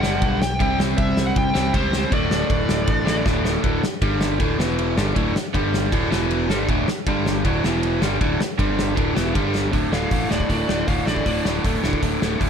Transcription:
Already playing: lead electric guitar F#5
0.03 picked electric bass F#1, overdriven electric guitar G2 D3 G3, snare
0.22 picked electric bass B1, kick, ride
0.42 lead electric guitar G5, snare
0.60 picked electric bass C2, overdriven electric guitar C3 G3 C4, kick, ride
0.78 picked electric bass C2, snare
0.98 picked electric bass C2, lead electric guitar E5, kick, ride
1.17 picked electric bass C2, snare
1.27 lead electric guitar F#5
1.36 picked electric bass C2, lead electric guitar G5, kick, ride
1.54 picked electric bass C2, overdriven electric guitar C3 G3 C4, snare
1.74 picked electric bass C#2, overdriven electric guitar C3 G3 C4, lead electric guitar C5, kick, ride
1.93 snare
2.11 picked electric bass D1, overdriven electric guitar D2 A2 D3, lead electric guitar D5, kick, ride
2.31 snare
2.50 picked electric bass D1, kick, ride
2.69 picked electric bass D1, snare
2.87 picked electric bass A1, kick, ride
3.05 picked electric bass A1, overdriven electric guitar D2 A2 D3, snare
3.24 picked electric bass D1, overdriven electric guitar D2 A2 D3, kick, snare
3.45 snare
3.63 picked electric bass D1, overdriven electric guitar D2 A2 D3, kick, ride
3.83 muted overdriven electric guitar stroke, muted picked electric bass stroke, snare
4.02 picked electric bass G1, overdriven electric guitar G2 D3 G3, kick, ride
4.21 snare
4.40 picked electric bass D1, overdriven electric guitar D2 A2 D3, kick, ride
4.59 picked electric bass E1, overdriven electric guitar E2 B2 E3, snare
4.79 ride
4.97 picked electric bass G1, overdriven electric guitar G2 D3 G3, snare
5.14 picked electric bass D1, overdriven electric guitar D2 A2 D3, kick, ride
5.35 muted overdriven electric guitar stroke, snare
5.54 picked electric bass G1, overdriven electric guitar G2 D3 G3, kick, ride
5.74 snare
5.92 picked electric bass D1, overdriven electric guitar D2 A2 D3, kick, ride
6.11 picked electric bass E1, overdriven electric guitar E2 B2 E3, snare
6.31 ride
6.49 picked electric bass G1, overdriven electric guitar G2 D3 G3, snare
6.69 picked electric bass D1, overdriven electric guitar D2 A2 D3, kick, ride
6.88 muted overdriven electric guitar stroke, snare
7.07 picked electric bass G1, overdriven electric guitar G2 D3 G3, kick, ride
7.26 snare
7.44 picked electric bass D1, overdriven electric guitar D2 A2 D3, kick, ride
7.64 picked electric bass E1, overdriven electric guitar E2 B2 E3, snare
7.83 ride
8.01 picked electric bass G1, overdriven electric guitar G2 D3 G3, snare
8.21 picked electric bass D1, overdriven electric guitar D2 A2 D3, kick, ride
8.40 muted overdriven electric guitar stroke, snare
8.58 picked electric bass G1, overdriven electric guitar G2 D3 G3, kick, ride
8.79 snare
8.95 picked electric bass D1, overdriven electric guitar D2 A2 D3, kick, ride
9.15 picked electric bass E1, overdriven electric guitar E2 B2 E3, snare
9.34 picked electric bass G1, overdriven electric guitar G2 D3 G3, kick, ride
9.55 snare
9.72 picked electric bass D1, overdriven electric guitar D2 A2 D3, kick, open hi-hat
9.92 picked electric bass D1, overdriven electric guitar D2 A2 D3, lead electric guitar F5, snare
10.11 picked electric bass A1, overdriven electric guitar D2 A2 D3, kick, open hi-hat
10.29 picked electric bass D1, overdriven electric guitar D2 A2 D3, lead electric guitar D5, snare
10.40 kick
10.49 picked electric bass D1, overdriven electric guitar D2 A2 D3, kick, open hi-hat
10.68 picked electric bass D1, overdriven electric guitar D2 A2 D3, snare
10.88 picked electric bass D1, overdriven electric guitar D2 A2 D3, lead electric guitar F5, kick, open hi-hat
11.06 picked electric bass A1, overdriven electric guitar D2 A2 D3, lead electric guitar D5, snare
11.16 kick
11.26 picked electric bass D1, overdriven electric guitar D2 A2 D3, kick, open hi-hat
11.45 picked electric bass D1, overdriven electric guitar D2 A2 D3, snare
11.65 picked electric bass D1, overdriven electric guitar D2 A2 D3, kick, open hi-hat
11.82 picked electric bass D1, overdriven electric guitar D2 A2 D3, snare
11.93 kick
12.02 picked electric bass D1, overdriven electric guitar D2 A2 D3, kick, open hi-hat
12.22 picked electric bass D1, overdriven electric guitar D2 A2 D3, snare
12.39 picked electric bass D1, overdriven electric guitar D2 A2 D3, kick, open hi-hat

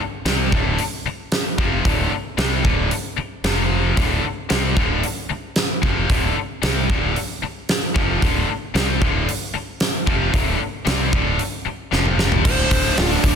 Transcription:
0.25 fingered electric bass C2, distorted electric guitar C3 G3 C4, snare, open hi-hat
0.52 distorted electric guitar D2 A2 D3, kick
0.79 open hi-hat
1.05 muted fingered electric bass stroke, muted distorted electric guitar stroke
1.32 snare, open hi-hat
1.58 fingered electric bass F1, distorted electric guitar F2 C3 F3, kick
1.85 fingered electric bass D1, distorted electric guitar D2 A2 D3, kick, open hi-hat
2.12 muted distorted electric guitar stroke
2.38 fingered electric bass C2, distorted electric guitar C3 G3 C4, snare, open hi-hat
2.64 fingered electric bass D1, distorted electric guitar D2 A2 D3, kick
2.91 open hi-hat
3.17 muted distorted electric guitar stroke, muted fingered electric bass stroke
3.44 fingered electric bass F1, distorted electric guitar F2 C3 F3, snare, open hi-hat
3.97 fingered electric bass D1, distorted electric guitar D2 A2 D3, kick, open hi-hat
4.22 muted distorted electric guitar stroke, muted fingered electric bass stroke
4.49 fingered electric bass C2, distorted electric guitar C3 G3 C4, snare, open hi-hat
4.76 fingered electric bass D1, distorted electric guitar D2 A2 D3, kick
5.04 open hi-hat
5.30 muted distorted electric guitar stroke, muted fingered electric bass stroke
5.56 snare, open hi-hat
5.82 fingered electric bass F1, distorted electric guitar F2 C3 F3, kick
6.09 fingered electric bass D1, distorted electric guitar D2 A2 D3, kick, open hi-hat
6.37 muted distorted electric guitar stroke
6.62 fingered electric bass C2, distorted electric guitar C3 G3 C4, snare, open hi-hat
6.89 fingered electric bass D1, distorted electric guitar D2 A2 D3, kick
7.16 open hi-hat
7.43 muted fingered electric bass stroke, muted distorted electric guitar stroke
7.69 snare, open hi-hat
7.95 fingered electric bass F1, distorted electric guitar F2 C3 F3, kick
8.21 fingered electric bass D1, distorted electric guitar D2 A2 D3, kick, open hi-hat
8.48 muted distorted electric guitar stroke, muted fingered electric bass stroke
8.74 fingered electric bass C2, distorted electric guitar C3 G3 C4, snare, open hi-hat
9.01 fingered electric bass D1, distorted electric guitar D2 A2 D3, kick
9.29 open hi-hat
9.54 muted distorted electric guitar stroke, muted fingered electric bass stroke
9.80 snare, open hi-hat
10.07 fingered electric bass F1, distorted electric guitar F2 C3 F3, kick
10.33 fingered electric bass D1, distorted electric guitar D2 A2 D3, kick, open hi-hat
10.60 muted distorted electric guitar stroke
10.85 fingered electric bass C2, distorted electric guitar C3 G3 C4, snare, open hi-hat
11.12 fingered electric bass D1, distorted electric guitar D2 A2 D3, kick
11.39 open hi-hat
11.66 muted distorted electric guitar stroke, muted fingered electric bass stroke
11.91 fingered electric bass F1, distorted electric guitar F2 C3 F3, snare
12.06 mid tom
12.19 snare
12.32 floor tom
12.44 fingered electric bass D1, distorted electric guitar D2 A2 D3, lead electric guitar C5, kick, crash
12.71 fingered electric bass D1, kick, open hi-hat
12.97 fingered electric bass D1, lead electric guitar F4, snare, open hi-hat
13.11 lead electric guitar D4
13.24 fingered electric bass D1, lead electric guitar D4, kick, open hi-hat

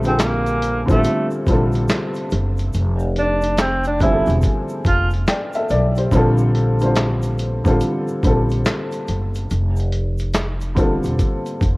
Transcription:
Already playing: upright bass A#1, upright piano D3 G3 C4 F4 A4
0.03 upright piano D3 G3 C4 F4, tenor saxophone C4, closed hi-hat, shaker
0.08 upright piano G#4
0.14 upright piano A4
0.19 tenor saxophone A#3, snare, clap, closed hi-hat, shaker
0.46 closed hi-hat, shaker
0.62 closed hi-hat, shaker
0.86 upright bass A1, upright piano D3 G3 C4 F4, kick, shaker
0.90 tenor saxophone A3, upright piano A4, closed hi-hat
1.04 closed hi-hat, shaker
1.31 shaker
1.46 upright bass A#1, upright piano C3 G3 C4 F4 A4, kick, closed hi-hat, shaker
1.53 upright piano D3
1.72 closed hi-hat, shaker
1.88 snare, clap, closed hi-hat, shaker
2.14 closed hi-hat, shaker
2.30 upright bass F#1, closed hi-hat, shaker
2.57 closed hi-hat, shaker
2.73 upright bass F1, closed hi-hat, shaker
2.99 shaker
3.16 tenor saxophone D4, closed hi-hat
3.41 closed hi-hat, shaker
3.57 tenor saxophone C4, snare, clap, closed hi-hat, shaker
3.84 tenor saxophone D4, closed hi-hat, shaker
4.00 upright piano D3 G3 C4, tenor saxophone E4, kick, closed hi-hat, shaker
4.04 upright piano F3 G#4
4.11 upright piano A4
4.26 upright bass E1, closed hi-hat, shaker
4.42 kick, closed hi-hat, shaker
4.69 shaker
4.85 upright bass F1, tenor saxophone F4, kick, closed hi-hat, shaker
5.11 closed hi-hat, shaker
5.27 upright piano D5 G5, snare, clap, closed hi-hat, shaker
5.53 upright piano A4 E5, closed hi-hat, shaker
5.69 upright bass B1, upright piano A4 D5, closed hi-hat, shaker
5.96 upright piano G4 C5, closed hi-hat, shaker
6.12 upright bass A#1, upright piano D3 G3 C4 F4, kick, closed hi-hat, shaker
6.16 upright piano A4
6.38 shaker
6.55 closed hi-hat
6.79 upright piano D3 G3 C4, closed hi-hat, shaker
6.83 upright piano F4 C5
6.95 snare, clap, closed hi-hat, shaker
7.22 closed hi-hat, shaker
7.38 closed hi-hat, shaker
7.64 upright bass A1, upright piano D3 G3 C4 F4 A4, kick, closed hi-hat, shaker
7.80 closed hi-hat, shaker
8.08 shaker
8.23 upright bass A#1, upright piano D3 G3 C4 F4, kick, closed hi-hat, shaker
8.27 upright piano A4
8.49 closed hi-hat, shaker
8.65 snare, clap, closed hi-hat, shaker
8.91 closed hi-hat, shaker
9.07 upright bass F#1, closed hi-hat, shaker
9.34 closed hi-hat, shaker
9.50 upright bass F1, closed hi-hat, shaker
9.76 closed hi-hat, shaker
9.92 closed hi-hat
10.18 closed hi-hat, shaker
10.34 snare, clap, closed hi-hat, shaker
10.61 closed hi-hat, shaker
10.75 upright piano D3 G3 C4 F4 A4, kick, closed hi-hat, shaker
11.03 upright bass E1, closed hi-hat, shaker
11.19 kick, closed hi-hat, shaker
11.46 closed hi-hat, shaker
11.61 upright bass F1, kick, closed hi-hat, shaker

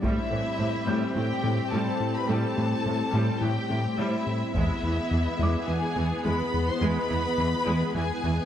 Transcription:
0.02 analog synth bass A2, cello section A2, french horn section G3 C4, viola section G3 C4, analog synth pad A3 E4 G4 C5, violin section E4 E5, taiko
0.31 analog synth bass A2, cello section A2, viola section E3
0.59 analog synth bass A2, cello section A2, viola section C3
0.87 cello section A2, analog synth bass A2, viola section G3, felt piano G6
1.16 cello section A2, analog synth bass A2, viola section E3, violin section G4 G5
1.44 cello section A2, analog synth bass A2, viola section C3
1.72 analog synth bass A2, cello section A2, viola section G3, violin section A4 A5
2.00 analog synth bass A2
2.15 violin section B4 B5
2.29 analog synth bass A2, cello section A2, viola section G3, violin section A4 A5
2.57 cello section A2, analog synth bass A2, viola section E3
2.86 analog synth bass A2, cello section A2, viola section C3
3.13 analog synth bass A2, cello section A2, viola section G3
3.41 analog synth bass A2, cello section A2, viola section E3, violin section G4 G5
3.70 analog synth bass A2, cello section A2, viola section C3
3.98 analog synth bass A2, cello section A2, viola section G3, violin section E4 E5
4.27 analog synth bass A2
4.54 analog synth bass E2, cello section E2, french horn section G#3 B3, viola section G#3 B3, analog synth pad B3 E4 G#4 B4, violin section E4 E5, taiko
4.83 analog synth bass E2, cello section E2, viola section E3
5.11 analog synth bass E2, cello section E2, viola section E3
5.39 analog synth bass E2, cello section E2, viola section G#3, felt piano D6
5.68 analog synth bass E2, cello section E2, viola section E3, violin section G#4 G#5
5.96 analog synth bass E2, cello section E2, viola section E3
6.25 analog synth bass E2, cello section E2, viola section G#3, violin section B4 B5
6.54 analog synth bass E2
6.69 violin section C5 C6
6.81 analog synth bass E2, cello section E2, viola section G#3, violin section B4 B5
7.11 analog synth bass E2, cello section E2, viola section E3
7.38 analog synth bass E2, cello section E2, viola section E3
7.67 analog synth bass E2, cello section E2, viola section G#3
7.95 analog synth bass E2, cello section E2, viola section E3, violin section G#4 G#5
8.23 analog synth bass E2, cello section E2, viola section E3

